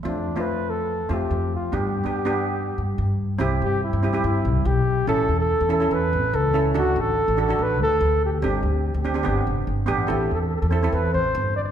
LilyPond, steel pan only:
\new Staff \with { instrumentName = "Steel pan" } { \time 4/4 \key c \major \tempo 4 = 144 <a c' f'>8 r16 <a c' f'>4 r8. <a c' f'>4 r8 | <b d' g'>8 r16 <b d' g'>16 r16 <b d' g'>4~ <b d' g'>16 r4. | <c' e' g'>4 r8 <c' e' g'>16 <c' e' g'>4~ <c' e' g'>16 r4 | <cis' e' a'>4 r8 <cis' e' a'>16 <cis' e' a'>4 r8. <cis' e' a'>16 r16 |
<d' fis' a'>4 r8 <d' fis' a'>16 <d' fis' a'>4~ <d' fis' a'>16 r4 | <c' d' g'>4 r8 <c' d' g'>16 <c' d' g'>16 <b d' g'>4~ <b d' g'>16 r16 <b d' g'>16 r16 | <c' e' a'>4 r8 <c' e' a'>16 <c' e' a'>4~ <c' e' a'>16 r4 | }